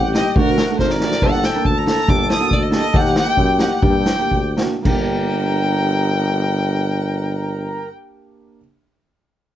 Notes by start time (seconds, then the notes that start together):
Already playing: A1 G4 F#5
0.14 G3 A#3 D#4 D#5, snare
0.36 D2 A3 D4 F#4 A#4, kick
0.47 snare
0.58 snare
0.70 A3 D4 A4
0.79 G#1 A#4 C5, kick, snare
0.90 D5, snare
1.00 A3 D4 F#4 D5, snare
1.11 snare
1.22 G1 A#3 D4 G4 A4 F#5, kick
1.33 snare
1.43 G5, snare
1.55 A#3 D4 A#4
1.65 D2 A5, kick
1.78 A#5
1.86 A#3 D4 A4 A#5, snare
1.98 snare
2.08 G1 A#3 D4 G4 D6, kick
2.30 D#6, snare
2.39 A#3 D4 F#4
2.51 D2 D5, kick
2.63 D#5
2.71 A#3 D4 G4 D#5, snare
2.94 D#2 A#3 D#4 G4 F#5, kick
3.05 snare
3.16 G5, snare
3.25 A#3 D#4 G4
3.37 F#2, kick
3.59 A#3 D#4 G4 F#5, snare
3.82 G2 A#3 D4 G4 G5, kick
4.06 snare
4.19 A#3 D4 G4
4.31 D2, kick
4.57 A#3 D4 F#4, snare
4.82 G1 A#3 D4 A#4 G5, kick, crash
4.89 G4